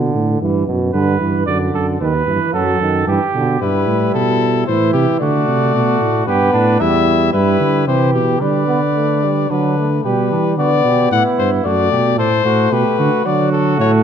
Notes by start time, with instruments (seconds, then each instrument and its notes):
Already playing: tuba B2, trombone D3
0.15 tuba A2
0.41 tuba G2, trombone E3
0.66 tuba F#2, trombone B2
0.93 tuba G2, trombone D3, trumpet B4
1.20 tuba G2, trombone E3
1.46 tuba F#2, trombone D3, trumpet D5
1.74 tuba F#2, trumpet A4
2.01 tuba D#2, trombone D#3, trumpet B4
2.27 tuba G2, trombone E3
2.53 tuba F#2, trombone F#3, trumpet A4
2.80 tuba F#2, trombone D#3
3.07 tuba G2, trombone E3, trumpet G4
3.34 tuba B2, trombone D3
3.61 tuba G2, trombone G3, trumpet E4, cornet B4
3.88 tuba A2
4.14 tuba B2, cornet A4
4.67 tuba A2, trombone E3, trumpet E4, cornet C5
4.93 tuba C3, cornet G4
5.19 tuba D3, trombone A3, trumpet F#4, cornet D5
5.48 tuba C3
5.74 tuba B2, trumpet F#4
6.00 tuba A2
6.26 tuba G2, trombone B3, trumpet G4, cornet B4
6.53 tuba A2, trumpet D4
6.80 tuba E2, trombone G3, trumpet E4, cornet E5
7.33 tuba G2, trombone G3, trumpet E4, cornet B4
7.60 tuba D3
7.87 tuba C3, trombone E3, trumpet G4, cornet C5
8.13 tuba B2, cornet G4
8.40 tuba D3, trombone G3, trumpet B4, cornet D5
8.67 trombone B3
8.96 trombone A3
9.24 trombone G3
9.50 tuba D3, trombone F#3, trumpet D4, cornet B4
9.78 trombone A3
10.04 tuba B2, trombone G3, trumpet G4, cornet B4
10.32 tuba E3, trumpet D4
10.58 tuba D3, trombone B3, trumpet F#4, cornet D5
10.85 tuba B2, trumpet G4
11.11 tuba A2, trombone B3, trumpet E4, cornet F#5
11.38 tuba G2, cornet C5
11.65 tuba F#2, trombone A3, trumpet F#4, cornet D5
11.92 tuba B2, trumpet G4
12.18 tuba A2, trombone A3, trumpet A4, cornet C5
12.45 tuba A2, trumpet F#4
12.72 tuba B2, trumpet G4, cornet B4
12.98 tuba D3, trumpet F#4
13.25 tuba D3, trombone F#3, trumpet F#4, cornet D5
13.52 cornet A4
13.78 tuba A2, trombone A3, cornet C#5